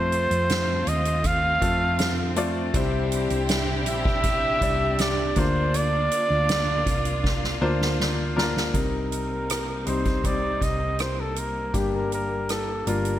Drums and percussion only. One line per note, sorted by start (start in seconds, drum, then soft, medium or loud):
0.12 closed hi-hat medium
0.31 closed hi-hat soft
0.49 snare loud
0.49 closed hi-hat medium
0.87 closed hi-hat medium
1.05 closed hi-hat medium
1.24 kick medium
1.24 closed hi-hat medium
1.62 kick medium
1.62 closed hi-hat medium
1.99 snare loud
1.99 closed hi-hat medium
2.36 closed hi-hat medium
2.74 kick loud
2.74 closed hi-hat medium
3.12 closed hi-hat medium
3.30 closed hi-hat soft
3.49 snare loud
3.49 closed hi-hat medium
3.86 closed hi-hat medium
4.05 kick medium
4.23 kick medium
4.23 closed hi-hat medium
4.61 kick medium
4.61 closed hi-hat medium
4.98 snare loud
4.98 closed hi-hat medium
5.36 kick medium
5.36 closed hi-hat medium
5.74 closed hi-hat medium
6.11 closed hi-hat medium
6.49 snare loud
6.49 closed hi-hat medium
6.86 kick medium
6.86 closed hi-hat medium
7.05 closed hi-hat soft
7.24 kick medium
7.24 snare medium
7.44 snare medium
7.81 snare medium
8.00 snare medium
8.38 snare medium
8.57 snare medium
8.74 kick medium
8.74 closed hi-hat medium
9.12 closed hi-hat medium
9.50 cross-stick medium
9.50 closed hi-hat medium
9.87 closed hi-hat medium
10.05 kick medium
10.05 closed hi-hat soft
10.24 kick medium
10.24 closed hi-hat medium
10.61 kick medium
10.61 closed hi-hat soft
10.99 cross-stick medium
10.99 closed hi-hat medium
11.36 closed hi-hat medium
11.74 kick medium
11.74 closed hi-hat medium
12.12 closed hi-hat medium
12.49 cross-stick medium
12.49 closed hi-hat medium
12.87 closed hi-hat medium
13.05 closed hi-hat soft